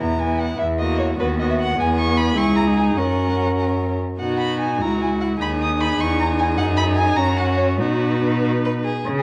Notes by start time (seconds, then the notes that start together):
0.00 E2 B3 E4 A#5
0.19 B3 E4 G#5
0.40 F#5
0.59 E2 E5
0.79 A#3 F#4 D#5
0.99 C#5
1.18 D#2 B3 F#4 B4
1.39 B3 F#4 D#5
1.50 E5
1.59 F#5
1.78 E2 B3 G#4 G#5
1.98 C#6
2.17 B5
2.36 C#2 E4 G#4 C#6
2.56 A#5
2.67 D#4
2.77 G#5
2.96 F#2 C#4 A#4 F#5
4.19 B2 D#4 F#4 F#5
4.40 B5
4.60 G#5
4.80 C#2 E4 F#4 A#5
5.02 G#5
5.20 F#5
5.39 D#2 D#4 G#4 B5
5.62 D#6
5.81 B5
5.99 E2 C#6
6.20 A#5
6.39 G#5
6.57 F#2 D#4 F#5
6.77 B5
6.96 G#5
7.16 F#2 C#4 F#4 A#5
7.37 F#5
7.57 C#5
7.80 B2 D#4 F#4 B4
8.43 F#4
8.65 B4
8.85 G#4
9.06 C#3
9.18 G#4